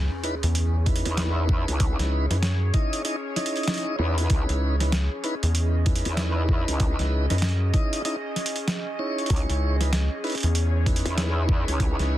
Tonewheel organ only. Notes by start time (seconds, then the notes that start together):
0.24 C#4 D#4 E4 B4
0.86 C#4 D#4 E4 B4
2.30 C#4 D#4 E4 B4
2.74 C#4 D#4 E4 D#5
3.05 C#4 D#4 E4 D#5
3.36 C#4 D#4 E4 D#5
3.99 C#4 D#4 E4 B4
4.81 C#4 D#4 E4 B4
5.24 C#4 D#4 E4 B4
5.86 C#4 D#4 E4 B4
7.30 C#4 D#4 E4 B4
7.74 C#4 D#4 E4 D#5
8.05 C#4 D#4 E4 D#5
8.99 C#4 D#4 E4 C#5
9.81 C#4 D#4 E4 B4
10.24 C#4 D#4 E4 B4
10.87 C#4 D#4 E4 B4